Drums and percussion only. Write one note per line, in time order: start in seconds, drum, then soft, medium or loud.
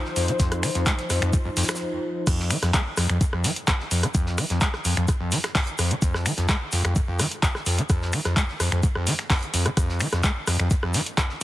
0.05 snare soft
0.16 open hi-hat medium
0.16 shaker medium
0.28 closed hi-hat medium
0.40 kick loud
0.40 snare medium
0.40 closed hi-hat medium
0.40 shaker medium
0.52 cross-stick medium
0.52 closed hi-hat soft
0.63 finger snap medium
0.63 snare loud
0.63 open hi-hat medium
0.63 shaker medium
0.75 snare soft
0.75 closed hi-hat medium
0.86 kick loud
0.86 snare loud
0.86 clap loud
0.86 closed hi-hat medium
0.86 shaker medium
0.98 snare soft
0.98 closed hi-hat soft
1.10 cross-stick soft
1.10 open hi-hat medium
1.10 shaker medium
1.22 finger snap medium
1.22 closed hi-hat medium
1.33 kick loud
1.33 closed hi-hat medium
1.33 shaker medium
1.57 snare medium
1.57 open hi-hat loud
1.57 shaker medium
1.63 snare medium
1.63 shaker medium
1.68 finger snap medium
1.68 cross-stick medium
1.68 snare medium
1.68 closed hi-hat medium
1.68 shaker medium
1.75 snare medium
1.75 shaker medium
2.27 kick loud
2.27 cross-stick medium
2.27 closed hi-hat medium
2.27 crash loud
2.27 shaker medium
2.40 snare soft
2.50 finger snap medium
2.50 open hi-hat loud
2.50 shaker medium
2.62 cross-stick medium
2.62 snare medium
2.62 closed hi-hat medium
2.74 kick loud
2.74 snare loud
2.74 clap loud
2.74 closed hi-hat medium
2.74 shaker medium
2.97 cross-stick medium
2.97 snare medium
2.97 open hi-hat medium
2.97 shaker medium
3.09 finger snap medium
3.09 closed hi-hat medium
3.21 kick loud
3.21 closed hi-hat medium
3.21 shaker medium
3.33 cross-stick medium
3.44 snare medium
3.44 open hi-hat loud
3.44 shaker medium
3.56 closed hi-hat medium
3.68 kick loud
3.68 cross-stick medium
3.68 snare loud
3.68 clap loud
3.68 closed hi-hat medium
3.68 shaker medium
3.80 snare soft
3.91 open hi-hat loud
3.91 shaker medium
4.03 cross-stick medium
4.03 closed hi-hat medium
4.15 kick loud
4.15 closed hi-hat medium
4.15 shaker medium
4.26 snare soft
4.38 finger snap medium
4.38 cross-stick medium
4.38 open hi-hat loud
4.38 shaker medium
4.50 snare medium
4.50 closed hi-hat medium
4.61 kick loud
4.61 snare loud
4.61 clap loud
4.61 closed hi-hat medium
4.61 shaker medium
4.73 cross-stick medium
4.73 snare soft
4.85 open hi-hat loud
4.85 shaker medium
4.97 finger snap medium
4.97 closed hi-hat medium
5.08 kick loud
5.08 cross-stick medium
5.08 closed hi-hat medium
5.08 shaker medium
5.32 snare soft
5.32 open hi-hat loud
5.32 shaker medium
5.44 finger snap medium
5.44 cross-stick medium
5.44 snare medium
5.44 closed hi-hat medium
5.55 kick loud
5.55 snare loud
5.55 clap loud
5.55 closed hi-hat medium
5.55 open hi-hat medium
5.67 closed hi-hat soft
5.78 cross-stick medium
5.78 open hi-hat loud
5.78 shaker medium
5.91 closed hi-hat medium
6.02 kick loud
6.02 closed hi-hat medium
6.02 shaker medium
6.14 cross-stick medium
6.14 snare medium
6.26 finger snap medium
6.26 open hi-hat loud
6.26 shaker medium
6.37 snare soft
6.37 closed hi-hat medium
6.49 kick loud
6.49 cross-stick medium
6.49 snare loud
6.49 clap loud
6.49 closed hi-hat medium
6.49 shaker medium
6.72 snare medium
6.72 open hi-hat loud
6.72 shaker medium
6.85 finger snap medium
6.85 cross-stick medium
6.85 closed hi-hat medium
6.96 kick loud
6.96 closed hi-hat medium
6.96 shaker medium
7.19 cross-stick medium
7.19 snare medium
7.19 open hi-hat loud
7.19 shaker medium
7.32 closed hi-hat medium
7.43 kick loud
7.43 snare loud
7.43 clap loud
7.43 closed hi-hat medium
7.43 shaker medium
7.55 cross-stick medium
7.55 snare soft
7.66 open hi-hat loud
7.66 shaker medium
7.78 closed hi-hat medium
7.90 kick loud
7.90 cross-stick medium
7.90 closed hi-hat medium
7.90 shaker medium
8.02 snare medium
8.13 finger snap medium
8.13 open hi-hat loud
8.13 shaker medium
8.25 cross-stick medium
8.25 snare medium
8.25 closed hi-hat medium
8.36 kick loud
8.36 snare loud
8.36 clap loud
8.36 closed hi-hat medium
8.36 shaker medium
8.48 snare soft
8.60 cross-stick medium
8.60 open hi-hat medium
8.60 shaker medium
8.72 finger snap medium
8.72 closed hi-hat soft
8.83 kick loud
8.83 closed hi-hat medium
8.83 shaker medium
8.95 cross-stick medium
9.07 snare medium
9.07 open hi-hat loud
9.07 shaker medium
9.19 finger snap medium
9.19 snare medium
9.19 closed hi-hat medium
9.30 kick loud
9.30 cross-stick medium
9.30 snare loud
9.30 clap loud
9.30 closed hi-hat medium
9.30 open hi-hat medium
9.43 closed hi-hat soft
9.54 open hi-hat loud
9.54 shaker medium
9.66 cross-stick medium
9.66 closed hi-hat medium
9.77 kick loud
9.77 cross-stick medium
9.77 closed hi-hat medium
9.77 shaker medium
9.89 snare soft
10.00 finger snap medium
10.00 open hi-hat loud
10.00 shaker medium
10.13 cross-stick medium
10.13 snare medium
10.13 closed hi-hat medium
10.23 kick loud
10.23 snare loud
10.23 clap loud
10.23 closed hi-hat medium
10.23 shaker medium
10.47 cross-stick medium
10.47 snare medium
10.47 open hi-hat medium
10.47 shaker medium
10.60 finger snap medium
10.60 closed hi-hat medium
10.71 kick loud
10.71 closed hi-hat medium
10.71 shaker medium
10.83 cross-stick medium
10.94 snare medium
10.94 open hi-hat loud
10.94 shaker medium
11.06 closed hi-hat medium
11.18 kick loud
11.18 cross-stick medium
11.18 snare loud
11.18 clap loud
11.18 closed hi-hat medium
11.18 shaker medium
11.30 snare soft